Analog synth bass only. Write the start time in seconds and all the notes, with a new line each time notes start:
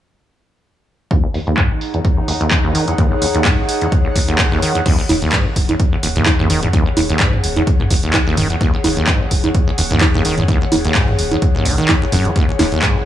5.09 D#1
5.56 D#1
6.03 D#1
6.50 D#1
6.97 D#1
7.44 D#1
7.91 D#1
8.37 D#1
8.84 D#1
9.31 D#1
9.78 D#1
10.25 D#1
10.72 D#1
11.19 D#1
11.66 A#1
12.12 D#1
12.59 D#1